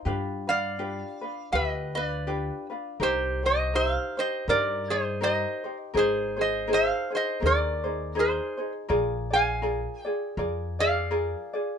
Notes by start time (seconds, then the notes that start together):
0.05 G2 D4 F4 G4 B4
0.47 D4 F4 B4 D5 F5
0.79 D4 F4 G4 B4
1.21 D4 F4 B4
1.52 D2 F4 G4 B4 E5
1.69 D#5
1.95 D4 F4 B4 D5
2.27 D4 F4 G4 B4
2.70 D4 F4 B4
3.00 C2 D#4 G4 A#4 C5
3.43 D#4 G4 C5 D#5
3.74 D#4 G4 A#4 C5 E5
3.93 F5
4.17 D#4 G4 C5 D#5
4.48 G2 D#4 G4 A#4 C5 D5
4.90 D#4 G#4 C5
5.21 D#4 G4 A#4 C5 D#5
5.64 D#4 G4 C5
5.94 G#1 D#4 G#4 A#4 C5
5.99 C5
6.36 D#4 G#4 C5
6.41 C5 D#5
6.67 D#4 G#4 A#4 C5
6.73 C5 F5
7.10 D#4 G#4 C5
7.15 C5 D#5
7.40 D#2 D#4 G#4 A#4 C5
7.46 A#4 D5
7.84 D#4 G#4 C5
8.15 D#4 G#4 A#4 C5
8.19 G#4 C5
8.57 D#4 G#4 C5
8.89 A#1 F4 G#4 A#4 D5
9.30 F4 G#4 D5 G#5
9.35 F5
9.62 F4 G#4 A#4 D5
9.99 G5
10.05 F4 G#4 D5
10.37 F2 F4 G#4 A#4 D5
10.79 F4 G#4 D5 F5
11.11 F4 G#4 A#4 D5
11.53 F4 G#4 D5